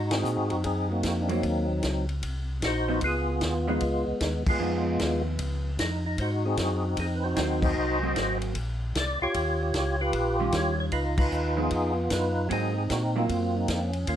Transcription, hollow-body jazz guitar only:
1.29 1.42 F#3 medium
1.29 1.42 A#3 medium
1.29 1.43 C4 medium
2.88 3.01 F3 medium
2.88 3.01 B3 medium
2.88 3.02 D#4 medium
3.68 3.80 F3 medium
3.68 3.80 B3 medium
3.68 3.80 D#4 medium
4.60 5.70 F3 medium
4.60 5.70 B3 medium
4.60 5.71 D#4 medium
7.36 7.96 F#3 medium
7.36 7.96 A#3 medium
7.36 7.97 C4 medium
8.02 8.53 F#3 medium
8.02 8.53 A#3 medium
8.02 8.53 C4 medium
10.40 10.90 D#3 medium
10.40 10.90 G3 medium
10.40 10.90 C#4 medium
10.40 10.90 F4 medium
11.57 11.69 F3 medium
11.57 11.69 B3 medium
11.57 11.70 D#4 medium
12.49 12.72 F#3 medium
12.49 12.72 A#3 medium
12.49 12.73 C4 medium
13.16 13.65 F#3 medium
13.16 13.66 A#3 medium
13.16 13.66 C4 medium

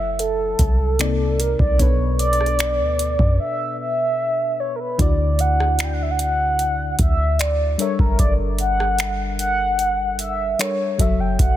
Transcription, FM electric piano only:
0.00 0.95 F#3 medium
0.00 0.95 E4 medium
0.00 0.99 A4 medium
0.00 0.96 C#5 medium
0.00 0.96 E5 medium
0.99 1.79 C3 medium
0.99 1.80 A#3 medium
0.99 1.79 C4 medium
0.99 1.80 D#4 medium
0.99 1.80 D5 medium
1.78 4.95 B2 medium
1.78 4.95 B3 medium
1.78 4.96 D4 medium
1.78 4.96 A4 medium
1.78 4.97 B4 medium
4.98 7.75 D3 medium
4.98 7.75 D4 medium
4.98 7.76 E4 medium
4.98 7.76 F#4 medium
4.98 7.76 D5 medium
7.78 10.55 G3 medium
7.78 10.55 D4 medium
7.78 10.56 A4 medium
7.78 10.56 A#4 medium
7.78 10.56 E5 medium
10.59 10.99 G3 soft
10.59 10.99 D4 soft
10.59 10.99 A4 soft
10.59 11.00 A#4 soft
10.59 11.00 C#5 medium
10.98 11.57 F#3 medium
10.98 11.57 F#4 medium
10.98 11.57 A4 medium
10.98 11.57 E5 medium

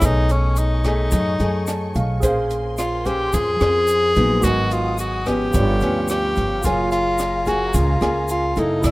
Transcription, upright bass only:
0.02 1.08 B1 medium
1.12 1.38 F#2 loud
1.40 1.91 F#2 medium
1.96 2.23 B1 medium
2.23 3.29 A#1 medium
3.34 3.59 F2 loud
3.61 4.12 F2 medium
4.17 4.44 A#1 medium
4.44 5.50 G#1 medium
5.54 5.79 G1 medium
5.81 6.32 D2 medium
6.37 6.65 G1 medium
6.65 7.70 F#1 medium
7.74 8.00 C#2 loud
8.01 8.52 C#2 medium
8.57 8.86 F#1 medium
8.84 8.91 C2 medium

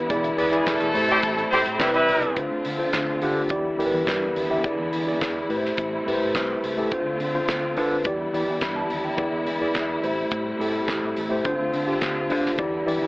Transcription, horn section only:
1.09 1.18 A3 medium
1.09 1.18 G4 loud
1.09 1.18 C5 loud
1.51 1.60 A3 medium
1.51 1.60 G4 medium
1.51 1.60 C5 loud
1.79 1.89 G3 medium
1.79 1.89 E4 medium
1.79 1.89 B4 medium
1.94 2.35 G3 medium
1.94 2.35 E4 medium
1.94 2.35 B4 loud

